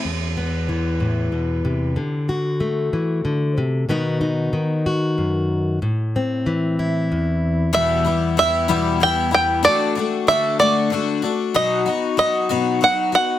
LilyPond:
<<
  \new Staff \with { instrumentName = "Five-string banjo" } { \time 6/8 \key e \minor \tempo 4. = 63 r2. | r2. | r2. | r2. |
e''4 e''4 g''8 g''8 | d''4 e''8 d''4 r8 | dis''4 dis''4 fis''8 fis''8 | }
  \new Staff \with { instrumentName = "Twelve-string acoustic guitar" } { \time 6/8 \key e \minor r2. | r2. | r2. | r2. |
<e, b, e g b e'>8 <e g b e'>8 <e g b e'>8 <e, b, e g b e'>8 <e g b e'>8 <e g b e'>8 | <d a d' fis'>8 <a d' fis'>8 <d a d' fis'>8 <d a d' fis'>8 <d a d' fis'>8 <a d' fis'>8 | <b, fis b dis' fis'>8 <b dis' fis'>8 <fis b dis' fis'>8 <b, fis b dis' fis'>8 <fis b dis' fis'>8 <b dis' fis'>8 | }
  \new Staff \with { instrumentName = "Steel-string acoustic guitar" } { \clef bass \time 6/8 \key e \minor << { r8 b2~ b8 | r8 fis'2~ fis'8 | <dis b dis' fis'>8 dis'4 fis'4. | r8 c'4 e'4.~ |
e'2. | r2. | r2. | } \\ { e,4 e8 a,8 b,8 c8 | d4 a8 e8 d8 c8 | b,4 dis4 fis,4 | a,4 e4 e,4~ |
e,2. | r2. | r2. | } >> }
>>